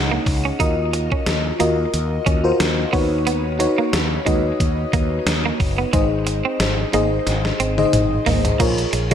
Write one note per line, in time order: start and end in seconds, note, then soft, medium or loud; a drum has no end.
0.00 0.17 C#2 medium
0.00 0.62 D#4 medium
0.00 0.62 G#4 medium
0.00 0.62 C#5 medium
0.00 0.60 D#5 medium
0.00 0.61 F#5 medium
0.11 0.24 A#3 medium
0.26 0.50 C#2 medium
0.26 muted clean electric guitar stroke soft
0.26 kick medium
0.26 open hi-hat medium
0.45 0.57 C#4 medium
0.59 1.08 D#2 loud
0.59 0.75 D#4 medium
0.59 1.32 F4 medium
0.59 1.32 F#4 medium
0.59 1.32 A#4 medium
0.59 1.32 D#5 medium
0.59 kick loud
0.59 closed hi-hat medium
0.93 muted clean electric guitar stroke soft
0.93 closed hi-hat medium
1.12 1.24 C#4 medium
1.12 kick medium
1.26 1.51 D#2 medium
1.26 snare loud
1.26 closed hi-hat medium
1.59 1.84 D#2 medium
1.59 1.75 A#3 medium
1.59 2.20 F4 medium
1.59 2.20 F#4 medium
1.59 2.20 A#4 medium
1.59 2.20 D#5 medium
1.59 closed hi-hat medium
1.94 2.18 D#2 loud
1.94 closed hi-hat medium
2.26 2.51 D#2 loud
2.26 2.41 C#4 medium
2.26 kick loud
2.26 closed hi-hat medium
2.44 2.93 F4 medium
2.44 2.91 F#4 medium
2.44 2.93 A#4 medium
2.44 2.93 C5 medium
2.60 2.84 D#2 medium
2.60 snare loud
2.60 closed hi-hat medium
2.92 3.65 D#2 medium
2.92 3.08 B3 medium
2.92 3.47 D#4 medium
2.92 3.48 F#4 medium
2.92 3.48 B4 medium
2.92 3.48 C#5 medium
2.92 kick loud
2.92 open hi-hat medium
3.27 3.41 B3 medium
3.27 closed hi-hat medium
3.59 4.09 D#4 medium
3.59 4.09 F#4 medium
3.59 4.09 B4 medium
3.59 4.09 C#5 medium
3.59 muted clean electric guitar stroke soft
3.59 closed hi-hat medium
3.78 3.90 A#3 medium
3.93 4.17 D#2 medium
3.93 snare loud
3.93 closed hi-hat medium
4.26 4.51 D#2 loud
4.26 4.41 G#3 medium
4.26 5.22 D#4 medium
4.26 5.22 F#4 medium
4.26 5.22 B4 medium
4.26 5.22 D#5 medium
4.26 kick medium
4.26 closed hi-hat medium
4.60 4.84 D#2 loud
4.60 kick medium
4.60 closed hi-hat medium
4.93 5.17 D#2 medium
4.93 5.08 A#3 medium
4.93 kick loud
4.93 closed hi-hat medium
5.26 5.50 D#2 medium
5.26 snare loud
5.26 closed hi-hat medium
5.46 5.57 A#3 medium
5.60 5.84 F#1 medium
5.60 muted clean electric guitar stroke soft
5.60 kick medium
5.60 open hi-hat medium
5.78 5.90 B3 medium
5.93 6.41 G#1 loud
5.93 6.08 G#3 medium
5.93 6.65 D#4 medium
5.93 6.65 G#4 medium
5.93 6.65 C5 medium
5.93 6.66 D#5 medium
5.93 kick loud
5.93 closed hi-hat medium
6.27 muted clean electric guitar stroke soft
6.27 closed hi-hat medium
6.45 6.57 C4 medium
6.60 6.84 G#1 medium
6.60 snare loud
6.60 closed hi-hat medium
6.93 7.18 G#1 loud
6.93 7.08 A#3 medium
6.93 7.53 D#4 medium
6.93 7.53 G#4 medium
6.93 7.54 C5 medium
6.93 7.54 D#5 medium
6.93 closed hi-hat medium
7.27 7.51 G#1 loud
7.27 snare medium
7.27 closed hi-hat medium
7.45 snare medium
7.60 7.84 G#1 medium
7.60 7.75 C4 medium
7.60 closed hi-hat medium
7.78 8.37 D#4 medium
7.78 8.37 G#4 medium
7.78 8.37 C5 medium
7.78 8.38 D#5 medium
7.78 high tom medium
7.93 8.17 G#1 medium
7.93 closed hi-hat medium
7.93 mid tom medium
8.26 8.51 G#1 medium
8.26 8.41 A#3 medium
8.26 floor tom medium
8.26 open hi-hat medium
8.45 closed hi-hat medium
8.45 floor tom medium
8.60 8.84 A#1 loud
8.60 8.75 A#3 medium
8.60 8.96 F4 medium
8.60 8.96 G#4 medium
8.60 8.96 A#4 medium
8.60 8.96 C#5 medium
8.60 kick loud
8.60 closed hi-hat medium
8.60 crash medium
8.78 closed hi-hat soft
8.93 9.14 A#1 medium
8.93 muted clean electric guitar stroke soft
8.93 closed hi-hat medium
9.11 9.14 F4 medium